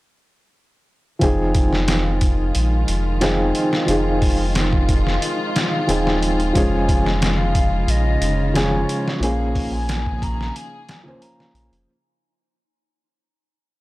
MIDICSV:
0, 0, Header, 1, 7, 480
1, 0, Start_track
1, 0, Key_signature, -4, "minor"
1, 0, Tempo, 666667
1, 875, Time_signature, 4, 2, 24, 8
1, 9939, End_track
2, 0, Start_track
2, 0, Title_t, "Flute"
2, 0, Program_c, 0, 73
2, 5216, Note_on_c, 0, 77, 86
2, 5689, Note_on_c, 0, 75, 88
2, 5699, Note_off_c, 0, 77, 0
2, 6168, Note_on_c, 0, 73, 88
2, 6179, Note_off_c, 0, 75, 0
2, 6641, Note_on_c, 0, 77, 97
2, 6652, Note_off_c, 0, 73, 0
2, 7005, Note_on_c, 0, 80, 98
2, 7016, Note_off_c, 0, 77, 0
2, 7365, Note_on_c, 0, 82, 105
2, 7376, Note_off_c, 0, 80, 0
2, 7605, Note_on_c, 0, 80, 112
2, 7616, Note_off_c, 0, 82, 0
2, 8077, Note_on_c, 0, 82, 92
2, 8087, Note_off_c, 0, 80, 0
2, 8441, Note_off_c, 0, 82, 0
2, 9939, End_track
3, 0, Start_track
3, 0, Title_t, "Synth texture"
3, 0, Program_c, 1, 99
3, 877, Note_on_c, 1, 84, 78
3, 888, Note_on_c, 1, 63, 76
3, 8566, Note_off_c, 1, 84, 0
3, 8571, Note_off_c, 1, 63, 0
3, 9939, End_track
4, 0, Start_track
4, 0, Title_t, "Felt piano"
4, 0, Program_c, 2, 0
4, 858, Note_on_c, 2, 53, 73
4, 870, Note_on_c, 2, 60, 67
4, 879, Note_on_c, 2, 63, 67
4, 886, Note_on_c, 2, 68, 87
4, 1002, Control_c, 2, 64, 127
4, 2279, Note_off_c, 2, 53, 0
4, 2285, Note_off_c, 2, 60, 0
4, 2290, Note_off_c, 2, 63, 0
4, 2293, Note_off_c, 2, 68, 0
4, 2309, Note_on_c, 2, 53, 82
4, 2314, Note_on_c, 2, 60, 73
4, 2321, Note_on_c, 2, 63, 73
4, 2325, Note_on_c, 2, 68, 91
4, 2765, Note_off_c, 2, 53, 0
4, 2767, Note_off_c, 2, 60, 0
4, 2770, Note_off_c, 2, 63, 0
4, 2773, Note_off_c, 2, 68, 0
4, 2779, Note_on_c, 2, 53, 76
4, 2788, Note_on_c, 2, 60, 69
4, 2800, Note_on_c, 2, 63, 74
4, 2809, Note_on_c, 2, 68, 83
4, 4199, Note_off_c, 2, 53, 0
4, 4204, Note_off_c, 2, 60, 0
4, 4210, Note_off_c, 2, 63, 0
4, 4215, Note_off_c, 2, 68, 0
4, 4227, Note_on_c, 2, 53, 70
4, 4232, Note_on_c, 2, 60, 71
4, 4237, Note_on_c, 2, 63, 69
4, 4245, Note_on_c, 2, 68, 85
4, 4683, Note_off_c, 2, 53, 0
4, 4686, Note_off_c, 2, 60, 0
4, 4688, Note_off_c, 2, 63, 0
4, 4692, Note_off_c, 2, 68, 0
4, 4703, Note_on_c, 2, 53, 79
4, 4711, Note_on_c, 2, 56, 71
4, 4721, Note_on_c, 2, 61, 74
4, 4726, Control_c, 2, 64, 0
4, 4730, Note_on_c, 2, 68, 95
4, 4841, Control_c, 2, 64, 127
4, 6122, Note_off_c, 2, 53, 0
4, 6125, Note_off_c, 2, 56, 0
4, 6131, Note_off_c, 2, 61, 0
4, 6135, Note_off_c, 2, 68, 0
4, 6149, Note_on_c, 2, 53, 84
4, 6153, Note_on_c, 2, 56, 74
4, 6157, Note_on_c, 2, 61, 79
4, 6166, Note_on_c, 2, 68, 95
4, 6604, Note_off_c, 2, 53, 0
4, 6607, Note_off_c, 2, 56, 0
4, 6608, Note_off_c, 2, 61, 0
4, 6613, Note_off_c, 2, 68, 0
4, 6626, Note_on_c, 2, 53, 84
4, 6635, Note_on_c, 2, 58, 74
4, 6644, Control_c, 2, 64, 0
4, 6644, Note_on_c, 2, 61, 73
4, 6653, Note_on_c, 2, 68, 88
4, 6767, Control_c, 2, 64, 127
4, 7931, Note_off_c, 2, 53, 0
4, 7935, Note_off_c, 2, 58, 0
4, 7940, Note_off_c, 2, 61, 0
4, 7944, Note_off_c, 2, 68, 0
4, 7945, Note_on_c, 2, 53, 90
4, 7956, Note_on_c, 2, 58, 84
4, 7966, Note_on_c, 2, 61, 84
4, 7977, Note_on_c, 2, 72, 101
4, 8520, Note_off_c, 2, 53, 0
4, 8525, Note_off_c, 2, 58, 0
4, 8530, Note_off_c, 2, 61, 0
4, 8536, Note_off_c, 2, 72, 0
4, 8565, Control_c, 2, 64, 0
4, 9939, End_track
5, 0, Start_track
5, 0, Title_t, "String section"
5, 0, Program_c, 3, 48
5, 868, Note_on_c, 3, 51, 74
5, 868, Note_on_c, 3, 56, 67
5, 870, Note_on_c, 3, 65, 84
5, 4683, Note_off_c, 3, 51, 0
5, 4715, Note_on_c, 3, 49, 81
5, 6602, Note_off_c, 3, 56, 0
5, 6604, Note_off_c, 3, 65, 0
5, 6635, Note_on_c, 3, 68, 86
5, 6636, Note_on_c, 3, 58, 71
5, 8526, Note_off_c, 3, 49, 0
5, 8536, Note_off_c, 3, 58, 0
5, 8536, Note_off_c, 3, 68, 0
5, 9939, End_track
6, 0, Start_track
6, 0, Title_t, "Analog synth bass"
6, 0, Program_c, 4, 38
6, 876, Note_on_c, 4, 29, 88
6, 1813, Note_off_c, 4, 29, 0
6, 1840, Note_on_c, 4, 34, 77
6, 2050, Note_off_c, 4, 34, 0
6, 2078, Note_on_c, 4, 29, 79
6, 2535, Note_off_c, 4, 29, 0
6, 2796, Note_on_c, 4, 29, 89
6, 3734, Note_off_c, 4, 29, 0
6, 4238, Note_on_c, 4, 27, 84
6, 4694, Note_off_c, 4, 27, 0
6, 4719, Note_on_c, 4, 29, 93
6, 5655, Note_off_c, 4, 29, 0
6, 5671, Note_on_c, 4, 34, 83
6, 5885, Note_off_c, 4, 34, 0
6, 5913, Note_on_c, 4, 29, 80
6, 6372, Note_off_c, 4, 29, 0
6, 6628, Note_on_c, 4, 34, 89
6, 7569, Note_off_c, 4, 34, 0
6, 8311, Note_on_c, 4, 34, 92
6, 8423, Note_off_c, 4, 34, 0
6, 8439, Note_on_c, 4, 29, 87
6, 8541, Note_off_c, 4, 29, 0
6, 9939, End_track
7, 0, Start_track
7, 0, Title_t, "Drums"
7, 874, Note_on_c, 9, 42, 73
7, 875, Note_on_c, 9, 36, 95
7, 946, Note_off_c, 9, 42, 0
7, 947, Note_off_c, 9, 36, 0
7, 1113, Note_on_c, 9, 42, 60
7, 1114, Note_on_c, 9, 36, 90
7, 1185, Note_off_c, 9, 42, 0
7, 1186, Note_off_c, 9, 36, 0
7, 1243, Note_on_c, 9, 38, 41
7, 1315, Note_off_c, 9, 38, 0
7, 1352, Note_on_c, 9, 42, 78
7, 1356, Note_on_c, 9, 38, 106
7, 1424, Note_off_c, 9, 42, 0
7, 1428, Note_off_c, 9, 38, 0
7, 1592, Note_on_c, 9, 42, 64
7, 1595, Note_on_c, 9, 36, 81
7, 1664, Note_off_c, 9, 42, 0
7, 1667, Note_off_c, 9, 36, 0
7, 1834, Note_on_c, 9, 42, 80
7, 1906, Note_off_c, 9, 42, 0
7, 2074, Note_on_c, 9, 42, 66
7, 2146, Note_off_c, 9, 42, 0
7, 2313, Note_on_c, 9, 42, 81
7, 2316, Note_on_c, 9, 38, 110
7, 2385, Note_off_c, 9, 42, 0
7, 2388, Note_off_c, 9, 38, 0
7, 2555, Note_on_c, 9, 42, 60
7, 2627, Note_off_c, 9, 42, 0
7, 2684, Note_on_c, 9, 38, 52
7, 2756, Note_off_c, 9, 38, 0
7, 2795, Note_on_c, 9, 42, 76
7, 2867, Note_off_c, 9, 42, 0
7, 3037, Note_on_c, 9, 36, 91
7, 3037, Note_on_c, 9, 46, 80
7, 3109, Note_off_c, 9, 36, 0
7, 3109, Note_off_c, 9, 46, 0
7, 3278, Note_on_c, 9, 42, 75
7, 3282, Note_on_c, 9, 38, 102
7, 3350, Note_off_c, 9, 42, 0
7, 3354, Note_off_c, 9, 38, 0
7, 3403, Note_on_c, 9, 36, 87
7, 3475, Note_off_c, 9, 36, 0
7, 3518, Note_on_c, 9, 36, 88
7, 3518, Note_on_c, 9, 42, 65
7, 3590, Note_off_c, 9, 36, 0
7, 3590, Note_off_c, 9, 42, 0
7, 3648, Note_on_c, 9, 38, 36
7, 3720, Note_off_c, 9, 38, 0
7, 3760, Note_on_c, 9, 42, 78
7, 3832, Note_off_c, 9, 42, 0
7, 4002, Note_on_c, 9, 42, 72
7, 4005, Note_on_c, 9, 38, 117
7, 4074, Note_off_c, 9, 42, 0
7, 4077, Note_off_c, 9, 38, 0
7, 4239, Note_on_c, 9, 42, 83
7, 4311, Note_off_c, 9, 42, 0
7, 4370, Note_on_c, 9, 38, 48
7, 4442, Note_off_c, 9, 38, 0
7, 4482, Note_on_c, 9, 42, 62
7, 4554, Note_off_c, 9, 42, 0
7, 4606, Note_on_c, 9, 42, 42
7, 4678, Note_off_c, 9, 42, 0
7, 4718, Note_on_c, 9, 36, 94
7, 4719, Note_on_c, 9, 42, 81
7, 4790, Note_off_c, 9, 36, 0
7, 4791, Note_off_c, 9, 42, 0
7, 4957, Note_on_c, 9, 36, 94
7, 4960, Note_on_c, 9, 42, 69
7, 5029, Note_off_c, 9, 36, 0
7, 5032, Note_off_c, 9, 42, 0
7, 5086, Note_on_c, 9, 38, 46
7, 5158, Note_off_c, 9, 38, 0
7, 5198, Note_on_c, 9, 42, 79
7, 5202, Note_on_c, 9, 38, 109
7, 5270, Note_off_c, 9, 42, 0
7, 5274, Note_off_c, 9, 38, 0
7, 5436, Note_on_c, 9, 36, 88
7, 5436, Note_on_c, 9, 42, 62
7, 5508, Note_off_c, 9, 36, 0
7, 5508, Note_off_c, 9, 42, 0
7, 5676, Note_on_c, 9, 42, 81
7, 5748, Note_off_c, 9, 42, 0
7, 5916, Note_on_c, 9, 42, 67
7, 5988, Note_off_c, 9, 42, 0
7, 6159, Note_on_c, 9, 42, 82
7, 6163, Note_on_c, 9, 38, 114
7, 6231, Note_off_c, 9, 42, 0
7, 6235, Note_off_c, 9, 38, 0
7, 6402, Note_on_c, 9, 42, 64
7, 6474, Note_off_c, 9, 42, 0
7, 6534, Note_on_c, 9, 38, 50
7, 6606, Note_off_c, 9, 38, 0
7, 6643, Note_on_c, 9, 42, 80
7, 6715, Note_off_c, 9, 42, 0
7, 6878, Note_on_c, 9, 36, 93
7, 6880, Note_on_c, 9, 46, 78
7, 6950, Note_off_c, 9, 36, 0
7, 6952, Note_off_c, 9, 46, 0
7, 7120, Note_on_c, 9, 42, 79
7, 7124, Note_on_c, 9, 38, 111
7, 7192, Note_off_c, 9, 42, 0
7, 7196, Note_off_c, 9, 38, 0
7, 7244, Note_on_c, 9, 36, 84
7, 7316, Note_off_c, 9, 36, 0
7, 7359, Note_on_c, 9, 36, 93
7, 7364, Note_on_c, 9, 42, 66
7, 7431, Note_off_c, 9, 36, 0
7, 7436, Note_off_c, 9, 42, 0
7, 7493, Note_on_c, 9, 38, 35
7, 7565, Note_off_c, 9, 38, 0
7, 7603, Note_on_c, 9, 42, 81
7, 7675, Note_off_c, 9, 42, 0
7, 7838, Note_on_c, 9, 42, 68
7, 7841, Note_on_c, 9, 38, 120
7, 7910, Note_off_c, 9, 42, 0
7, 7913, Note_off_c, 9, 38, 0
7, 8078, Note_on_c, 9, 42, 84
7, 8150, Note_off_c, 9, 42, 0
7, 8209, Note_on_c, 9, 38, 46
7, 8281, Note_off_c, 9, 38, 0
7, 8316, Note_on_c, 9, 42, 67
7, 8388, Note_off_c, 9, 42, 0
7, 8444, Note_on_c, 9, 42, 43
7, 8516, Note_off_c, 9, 42, 0
7, 9939, End_track
0, 0, End_of_file